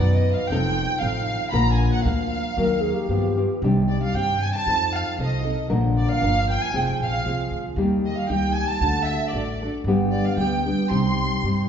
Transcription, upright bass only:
0.00 0.33 F#2 medium
0.50 0.84 F1 medium
1.02 1.35 A1 medium
1.53 1.87 A#1 medium
2.05 2.39 D2 medium
2.57 2.91 D#2 medium
3.09 3.43 G2 medium
3.62 3.96 C2 medium
4.14 4.48 G2 medium
4.66 5.00 F2 medium
5.19 5.52 C2 medium
5.70 6.04 A#1 medium
6.22 6.55 G1 medium
6.73 6.91 F1 medium
7.00 7.23 A#1 medium
7.24 7.49 C2 medium
7.51 7.75 D2 medium
7.76 8.11 D#2 medium
8.29 8.63 C#2 medium
8.81 9.15 D2 medium
9.33 9.67 A1 medium
9.84 10.19 G1 medium
10.37 10.71 D2 medium
10.91 11.25 C2 loud
11.43 11.69 G2 medium

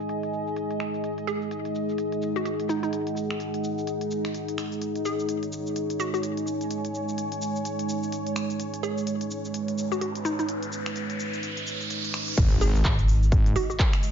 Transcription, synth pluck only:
1.27 1.94 G#4 medium
2.36 2.42 F#4 medium
2.45 2.54 F#4 medium
2.69 2.78 D#4 medium
2.83 2.89 D#4 medium
5.05 5.72 G#4 medium
6.00 6.09 F#4 medium
6.14 6.20 F#4 medium
8.83 9.50 G#4 medium
9.92 9.98 F#4 medium
10.01 10.10 F#4 medium
10.25 10.34 D#4 medium
10.39 10.45 D#4 medium
12.61 13.28 G#4 loud
13.56 13.65 F#4 medium
13.70 13.76 F#4 medium

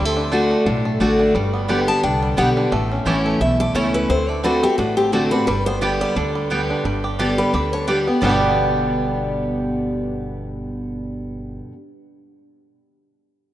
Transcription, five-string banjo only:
0.05 0.32 A3 medium
0.17 0.51 D4 medium
0.32 0.81 D3 medium
0.51 0.65 D4 medium
0.66 0.99 D4 medium
0.85 1.32 A3 medium
1.01 1.18 D4 medium
1.19 1.35 D4 medium
1.35 1.84 G3 medium
1.53 1.87 B3 medium
1.69 2.19 D3 medium
1.88 2.35 B3 medium
2.03 2.53 D4 medium
2.23 2.69 G3 medium
2.38 2.72 B3 medium
2.57 2.72 D4 medium
2.72 3.25 A3 medium
2.92 3.38 C#4 medium
3.07 3.56 G4 medium
3.26 3.59 A3 medium
3.41 3.91 E4 medium
3.60 4.07 A3 medium
3.76 4.09 C#4 medium
3.95 4.10 E4 medium
4.10 4.59 C4 medium
4.29 4.62 A3 medium
4.44 4.78 D4 medium
4.63 5.10 A3 medium
4.79 5.13 D4 medium
4.98 5.44 C4 medium
5.13 5.32 D4 medium
5.32 6.16 D4 medium
5.48 5.97 G3 medium
5.67 6.14 B3 medium
5.82 6.32 G4 medium
6.01 6.34 G3 medium
6.16 6.66 D4 medium
6.35 6.82 G3 medium
6.51 6.85 B3 medium
6.70 6.85 D4 medium
6.85 7.35 G3 medium
7.04 7.51 G4 medium
7.20 7.69 D4 medium
7.39 7.85 G3 medium
7.55 7.87 G4 medium
7.73 8.20 D4 medium
7.89 8.23 G4 medium
8.07 8.23 B3 medium
8.23 11.60 G3 medium
8.23 11.62 B3 medium
8.27 11.64 D4 medium
8.27 11.66 G4 medium

